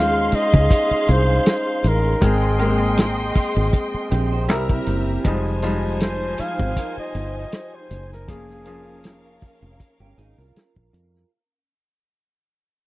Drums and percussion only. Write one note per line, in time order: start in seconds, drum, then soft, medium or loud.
0.32 closed hi-hat medium
0.54 kick loud
0.71 kick medium
0.71 closed hi-hat medium
1.08 closed hi-hat medium
1.46 snare loud
1.46 closed hi-hat medium
1.84 closed hi-hat medium
2.22 kick loud
2.22 closed hi-hat medium
2.59 closed hi-hat medium
2.97 snare loud
2.97 closed hi-hat medium
3.35 kick medium
3.35 open hi-hat medium
3.73 kick medium
3.73 closed hi-hat medium
4.12 closed hi-hat medium
4.49 snare loud
4.49 closed hi-hat medium
4.69 kick medium
4.87 closed hi-hat medium
5.25 kick loud
5.25 closed hi-hat medium
5.62 closed hi-hat medium
6.00 snare loud
6.00 closed hi-hat medium
6.38 closed hi-hat medium
6.59 kick loud
6.76 kick medium
6.76 closed hi-hat medium
7.15 closed hi-hat medium
7.52 snare loud
7.52 closed hi-hat medium
7.90 closed hi-hat medium
8.12 snare soft
8.28 kick loud
8.28 closed hi-hat loud
8.50 snare soft
8.66 closed hi-hat medium
9.04 snare loud
9.04 closed hi-hat medium
9.41 kick medium
9.41 open hi-hat medium
9.80 kick medium
9.80 closed hi-hat medium
10.19 closed hi-hat medium
10.56 snare loud
10.56 closed hi-hat medium
10.76 kick loud
10.94 closed hi-hat medium
11.16 snare soft